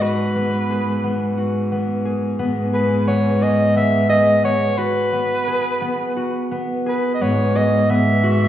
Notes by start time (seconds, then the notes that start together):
Already playing: G#2 B3 G#4
0.01 F#4 B4
0.35 B3
0.70 G#4
1.04 B3
1.38 F#4
1.72 B3
2.05 G#4
2.39 G#2 B3
2.73 G#4 B4
3.07 B3 C#5
3.42 G#4 D#5
3.75 B3 E5
4.09 G#4 D#5
4.44 B3 C#5
4.77 F#4 B4
5.12 B3
5.47 G#4
5.81 B3
6.17 F#4
6.51 B3
6.86 G#4 B4
7.14 D#5
7.21 G#2 B3 C#5
7.55 G#4 D#5
7.90 B3 E5
8.23 F#4